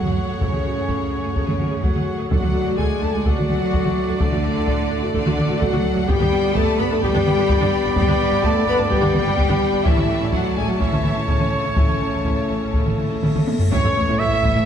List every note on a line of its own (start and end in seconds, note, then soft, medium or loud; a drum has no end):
0.00 2.27 A2 medium
0.00 0.41 F#3 medium
0.00 2.27 A3 medium
0.00 0.41 F#4 medium
0.00 2.27 F#4 medium
0.00 2.27 G#4 medium
0.00 2.27 C#5 medium
0.00 0.40 F#5 medium
0.00 2.27 F#5 medium
0.00 sub drop medium
0.06 0.11 F#2 soft
0.06 0.11 A3 soft
0.06 0.11 G#4 soft
0.06 taiko mid soft
0.29 0.34 F#2 soft
0.29 0.35 A3 medium
0.29 0.35 G#4 soft
0.39 0.46 F#2 medium
0.39 1.34 C#3 medium
0.39 0.46 A3 medium
0.39 1.33 C#4 medium
0.39 0.45 A4 medium
0.39 1.35 C#5 medium
0.39 taiko medium
0.53 0.58 F#2 soft
0.53 0.58 A3 soft
0.53 0.58 G#4 soft
0.53 taiko mid soft
0.64 0.70 F#2 soft
0.64 0.69 A3 soft
0.64 0.69 F#4 soft
0.76 0.81 F#2 medium
0.76 0.81 A3 soft
0.76 0.82 G#4 soft
0.88 0.93 F#2 medium
0.88 0.93 A3 medium
0.88 0.93 A4 medium
0.88 taiko medium
1.12 1.17 F#2 soft
1.12 1.16 A3 soft
1.12 1.17 F#4 medium
1.24 1.29 F#2 soft
1.24 1.29 A3 soft
1.24 1.29 G#4 medium
1.36 1.41 F#2 medium
1.36 1.82 C#3 medium
1.36 1.41 A3 medium
1.36 1.83 C#4 medium
1.36 1.41 A4 medium
1.36 1.83 C#5 medium
1.36 taiko medium
1.48 1.53 F#2 soft
1.48 1.53 A3 soft
1.48 1.53 G#4 medium
1.48 taiko mid soft
1.60 1.65 F#2 medium
1.60 1.65 A3 medium
1.60 1.65 F#4 medium
1.60 taiko mid medium
1.72 1.77 F#2 soft
1.72 1.76 A3 soft
1.72 1.76 G#4 medium
1.83 1.88 F#2 medium
1.83 2.30 F#3 medium
1.83 1.88 A3 medium
1.83 2.30 F#4 medium
1.83 1.88 A4 medium
1.83 2.29 F#5 medium
1.83 taiko medium
1.95 2.00 F#2 medium
1.95 2.00 A3 medium
1.95 2.00 G#4 medium
1.95 taiko mid soft
2.18 2.24 F#2 medium
2.18 2.23 A3 medium
2.18 2.23 G#4 medium
2.30 2.36 D2 medium
2.30 5.91 A2 medium
2.30 2.78 F#3 medium
2.30 5.91 A3 medium
2.30 2.35 A3 medium
2.30 6.05 A3 medium
2.30 6.06 D4 medium
2.30 2.78 F#4 loud
2.30 2.35 A4 medium
2.30 6.09 A4 medium
2.30 6.06 D5 medium
2.30 5.77 D5 medium
2.30 6.05 D5 medium
2.30 2.77 F#5 medium
2.30 6.05 F#5 medium
2.30 taiko loud
2.42 2.48 D2 medium
2.42 2.47 A3 medium
2.42 2.47 F#4 soft
2.42 taiko mid soft
2.54 2.60 D2 medium
2.54 2.59 A3 medium
2.54 2.59 D4 medium
2.66 2.72 D2 medium
2.66 2.71 A3 soft
2.66 2.71 F#4 medium
2.77 2.84 D2 medium
2.77 3.02 G#3 medium
2.77 2.83 A3 medium
2.77 3.02 G#4 loud
2.77 2.83 A4 medium
2.77 3.01 G#5 medium
2.77 taiko medium
3.01 3.07 D2 medium
3.01 3.06 A3 medium
3.01 3.14 A3 medium
3.01 3.07 D4 soft
3.01 3.14 A4 loud
3.01 3.14 A5 medium
3.12 3.19 D2 medium
3.12 3.26 G#3 medium
3.12 3.18 A3 medium
3.12 3.19 F#4 medium
3.12 3.25 G#5 medium
3.16 3.27 G#4 medium
3.24 3.31 D2 medium
3.24 4.21 F#3 medium
3.24 3.30 A3 medium
3.24 4.21 F#4 loud
3.24 3.30 A4 medium
3.24 4.20 F#5 medium
3.24 taiko medium
3.37 3.43 D2 medium
3.37 3.42 A3 medium
3.37 3.42 F#4 medium
3.37 taiko mid soft
3.48 3.55 D2 medium
3.48 3.54 A3 medium
3.48 3.53 D4 medium
3.48 taiko mid medium
3.61 3.67 D2 medium
3.61 3.66 A3 medium
3.61 3.66 F#4 medium
3.72 3.79 D2 medium
3.72 3.77 A3 medium
3.72 3.77 A4 medium
3.72 taiko medium
3.84 3.91 D2 medium
3.84 3.89 A3 medium
3.84 3.89 F#4 medium
3.84 taiko mid soft
4.08 4.14 D2 medium
4.08 4.13 A3 medium
4.08 4.13 F#4 medium
4.19 4.26 D2 medium
4.19 5.13 D3 medium
4.19 4.24 A3 medium
4.19 4.98 D4 loud
4.19 4.24 A4 medium
4.19 5.12 D5 medium
4.19 taiko medium
4.31 4.38 D2 medium
4.31 4.36 A3 medium
4.31 4.36 F#4 medium
4.31 taiko mid soft
4.43 4.49 D2 medium
4.43 4.48 A3 medium
4.43 4.49 D4 medium
4.55 4.62 D2 medium
4.55 4.60 A3 medium
4.55 4.60 F#4 medium
4.67 4.73 D2 medium
4.67 4.71 A3 loud
4.67 4.72 A4 medium
4.67 taiko medium
4.90 4.97 D2 medium
4.90 4.95 A3 medium
4.90 4.95 D4 medium
5.01 5.09 D2 medium
5.01 5.06 A3 medium
5.01 5.06 F#4 medium
5.14 5.19 D2 medium
5.14 5.61 D3 medium
5.14 5.19 A3 medium
5.14 5.61 D4 loud
5.14 5.19 A4 medium
5.14 5.61 D5 medium
5.14 taiko medium
5.26 5.31 D2 medium
5.26 5.31 A3 medium
5.26 5.31 F#4 medium
5.26 taiko mid medium
5.37 5.43 D2 medium
5.37 5.42 A3 medium
5.37 5.42 D4 medium
5.37 taiko mid medium
5.49 5.54 D2 medium
5.49 5.54 A3 medium
5.49 5.54 F#4 medium
5.60 5.66 D2 medium
5.60 6.09 F#3 loud
5.60 5.65 A3 loud
5.60 6.08 F#4 loud
5.60 5.65 A4 medium
5.60 6.08 F#5 loud
5.60 taiko medium
5.72 5.78 D2 medium
5.72 5.77 A3 medium
5.72 5.77 F#4 medium
5.72 taiko mid medium
5.96 6.02 D2 medium
5.96 6.01 A3 medium
5.96 6.01 F#4 medium
6.07 6.13 G1 loud
6.07 9.81 G2 medium
6.07 6.56 G3 loud
6.07 6.12 B3 loud
6.07 9.85 B3 medium
6.07 9.81 B3 medium
6.07 9.81 D4 medium
6.07 6.12 G4 medium
6.07 9.85 G4 medium
6.07 6.55 G4 loud
6.07 9.81 D5 medium
6.07 10.76 D5 medium
6.07 9.82 D5 loud
6.07 6.57 G5 loud
6.07 9.86 B5 medium
6.07 taiko loud
6.20 6.25 G1 medium
6.20 6.25 B3 medium
6.20 6.25 D4 medium
6.20 taiko mid medium
6.32 6.37 G1 medium
6.32 6.37 B3 medium
6.43 6.48 G1 medium
6.43 6.48 B3 medium
6.43 6.48 D4 medium
6.54 6.60 G1 loud
6.54 6.79 A3 loud
6.54 6.59 B3 loud
6.54 6.59 G4 loud
6.54 6.79 A4 loud
6.54 6.79 A5 loud
6.54 taiko medium
6.78 6.83 G1 medium
6.78 6.83 B3 medium
6.78 6.91 B3 loud
6.78 6.90 B4 loud
6.78 6.91 B5 medium
6.90 6.96 G1 medium
6.90 7.03 A3 medium
6.90 6.95 B3 medium
6.90 6.95 D4 medium
6.90 7.03 A4 loud
6.90 7.04 A5 medium
7.02 7.08 G1 loud
7.02 7.95 G3 loud
7.02 7.07 B3 loud
7.02 7.07 G4 loud
7.02 7.95 G4 loud
7.02 7.96 G5 loud
7.02 taiko medium
7.14 7.19 G1 medium
7.14 7.19 B3 medium
7.14 7.19 D4 medium
7.14 taiko mid medium
7.26 7.31 G1 medium
7.26 7.31 B3 medium
7.26 taiko mid medium
7.38 7.43 G1 medium
7.38 7.43 B3 medium
7.38 7.43 D4 medium
7.49 7.54 G1 loud
7.49 7.54 B3 medium
7.49 7.54 G4 loud
7.49 taiko medium
7.61 7.66 G1 medium
7.61 7.66 B3 medium
7.61 7.66 D4 medium
7.61 taiko mid medium
7.84 7.90 G1 medium
7.84 7.89 B3 medium
7.84 7.89 D4 medium
7.96 8.01 G1 loud
7.96 8.43 G3 loud
7.96 8.00 B3 medium
7.96 8.01 G4 loud
7.96 8.43 G4 loud
7.96 8.43 G5 loud
7.96 taiko loud
8.08 8.13 G1 medium
8.08 8.13 B3 medium
8.08 8.13 D4 medium
8.08 taiko mid medium
8.20 8.25 G1 medium
8.20 8.25 B3 medium
8.31 8.37 G1 medium
8.31 8.36 B3 medium
8.31 8.36 D4 medium
8.43 8.48 G1 medium
8.43 8.67 A3 loud
8.43 8.48 B3 loud
8.43 8.48 G4 loud
8.43 8.67 A4 loud
8.43 8.67 A5 loud
8.43 taiko medium
8.66 8.72 G1 medium
8.66 8.71 B3 medium
8.66 8.79 B3 medium
8.66 8.79 B4 loud
8.66 8.78 B5 loud
8.78 8.84 G1 medium
8.78 8.91 A3 medium
8.78 8.83 B3 medium
8.78 8.83 D4 medium
8.78 8.92 A4 loud
8.78 8.91 A5 medium
8.89 8.96 G1 medium
8.89 9.84 G3 loud
8.89 8.94 B3 loud
8.89 8.94 G4 loud
8.89 9.86 G4 loud
8.89 9.85 G5 loud
8.89 taiko medium
9.01 9.07 G1 medium
9.01 9.06 B3 medium
9.01 9.06 D4 medium
9.01 taiko mid medium
9.13 9.19 G1 medium
9.13 9.18 B3 medium
9.13 taiko mid medium
9.25 9.31 G1 medium
9.25 9.31 B3 medium
9.25 9.30 D4 medium
9.36 9.43 G1 loud
9.36 9.42 B3 medium
9.36 9.41 G4 medium
9.36 taiko medium
9.49 9.54 G1 medium
9.49 9.54 B3 medium
9.49 9.54 D4 medium
9.49 taiko mid medium
9.72 9.78 G1 medium
9.72 9.77 B3 medium
9.72 9.77 D4 medium
9.85 9.90 A1 loud
9.85 13.44 A2 medium
9.85 10.33 E3 loud
9.85 13.69 A3 medium
9.85 13.43 A3 medium
9.85 9.90 C#4 medium
9.85 9.89 E4 medium
9.85 13.68 E4 medium
9.85 10.34 E4 loud
9.85 13.69 A4 medium
9.85 13.43 C#5 loud
9.85 13.71 E5 medium
9.85 10.33 E5 loud
9.85 13.47 A5 medium
9.85 taiko loud
9.97 10.02 A1 medium
9.97 10.02 C#4 medium
9.97 taiko mid soft
10.09 10.14 A1 medium
10.09 10.13 A3 medium
10.09 10.13 C#4 medium
10.20 10.26 A1 medium
10.20 10.25 C#4 medium
10.32 10.38 A1 medium
10.32 10.56 F#3 medium
10.32 10.37 C#4 medium
10.32 10.37 E4 medium
10.32 10.56 F#4 loud
10.32 10.56 F#5 medium
10.32 taiko medium
10.56 10.62 A1 medium
10.56 10.68 G#3 medium
10.56 10.61 A3 medium
10.56 10.61 C#4 medium
10.56 10.69 G#4 loud
10.56 10.68 G#5 medium
10.68 10.74 A1 medium
10.68 10.80 F#3 medium
10.68 10.73 C#4 medium
10.68 10.81 F#4 medium
10.68 10.80 F#5 medium
10.80 10.86 A1 medium
10.80 11.28 E3 medium
10.80 10.85 C#4 medium
10.80 10.85 E4 medium
10.80 11.29 E4 loud
10.80 13.51 C#5 medium
10.80 11.27 E5 medium
10.80 taiko medium
10.92 10.98 A1 medium
10.92 10.97 C#4 medium
10.92 taiko mid medium
11.04 11.10 A1 medium
11.04 11.09 A3 medium
11.04 11.09 C#4 medium
11.04 taiko mid medium
11.15 11.21 A1 medium
11.15 11.20 C#4 medium
11.28 11.33 A1 medium
11.28 11.76 C#3 medium
11.28 11.62 C#4 medium
11.28 11.33 C#4 medium
11.28 11.33 E4 medium
11.28 11.76 C#5 medium
11.28 taiko medium
11.39 11.46 A1 medium
11.39 11.45 C#4 medium
11.39 taiko mid medium
11.64 11.70 A1 medium
11.64 11.69 C#4 medium
11.75 11.82 A1 medium
11.75 13.45 C#3 medium
11.75 13.43 C#4 medium
11.75 11.81 C#4 medium
11.75 11.81 E4 medium
11.75 13.45 C#5 medium
11.75 taiko loud
11.75 cymbal swell medium
11.89 11.94 A1 soft
11.89 11.94 C#4 soft
11.89 taiko mid medium
12.01 12.07 A1 soft
12.01 12.06 A3 soft
12.01 12.06 C#4 soft
12.13 12.19 A1 soft
12.13 12.18 C#4 soft
12.24 12.30 A1 medium
12.24 12.30 C#4 medium
12.24 12.30 E4 medium
12.24 taiko medium
12.49 12.55 A1 soft
12.49 12.55 A3 soft
12.49 12.55 C#4 soft
12.62 12.68 A1 soft
12.62 12.67 C#4 soft
12.74 12.79 A1 medium
12.74 12.79 C#4 medium
12.74 12.79 E4 medium
12.74 taiko medium
12.86 12.92 A1 soft
12.86 12.91 C#4 soft
12.86 taiko mid soft
12.98 13.04 A1 medium
12.98 13.03 A3 medium
12.98 13.03 C#4 soft
12.98 taiko mid medium
13.10 13.16 A1 soft
13.10 13.15 C#4 medium
13.23 13.28 A1 medium
13.23 13.28 C#4 medium
13.23 13.28 E4 medium
13.23 taiko mid medium
13.35 13.40 A1 soft
13.35 13.41 C#4 medium
13.35 taiko mid medium
13.48 taiko high medium
13.60 13.65 A1 soft
13.60 13.65 C#4 medium
13.60 taiko low medium
13.70 13.77 A1 medium
13.70 13.77 A2 loud
13.70 14.65 E3 medium
13.70 14.65 A3 medium
13.70 13.77 A3 medium
13.70 14.17 C#4 loud
13.70 14.65 E4 medium
13.70 13.77 E4 medium
13.70 14.65 A4 medium
13.70 14.65 C#5 medium
13.70 14.16 C#5 medium
13.70 14.16 C#5 loud
13.70 14.21 C#5 loud
13.70 taiko loud
13.70 sub drop medium
13.84 13.89 A2 medium
13.84 13.89 A3 medium
13.84 13.89 E4 medium
13.96 14.01 A1 medium
13.96 14.01 A2 medium
13.96 14.01 A3 medium
13.96 14.01 E4 medium
14.08 14.13 A2 loud
14.08 14.13 A3 medium
14.08 14.13 E4 loud
14.08 taiko medium
14.19 14.25 A1 medium
14.19 14.25 A2 medium
14.19 14.25 A3 medium
14.19 14.25 E4 medium
14.19 14.65 E4 loud
14.19 14.65 E5 loud
14.19 14.65 E5 medium
14.19 14.65 E5 loud
14.32 14.37 A2 medium
14.32 14.36 A3 medium
14.32 14.36 E4 medium
14.44 14.49 A1 medium
14.44 14.49 A2 loud
14.44 14.49 A3 medium
14.44 14.49 E4 medium
14.44 taiko medium
14.55 14.61 A2 medium
14.55 14.60 A3 medium
14.55 14.60 E4 medium
14.55 taiko low-mid medium